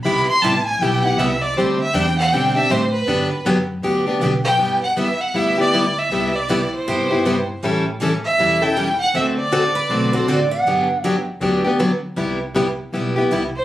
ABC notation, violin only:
X:1
M:4/4
L:1/8
Q:"Swing" 1/4=158
K:G
V:1 name="Violin"
b c' a _a g f e d | c e g f g e c B- | B2 z4 z g- | g f e f e d2 e- |
e d2 c4 z | z3 e2 g2 f | e d6 z | z8 |
z6 z c |]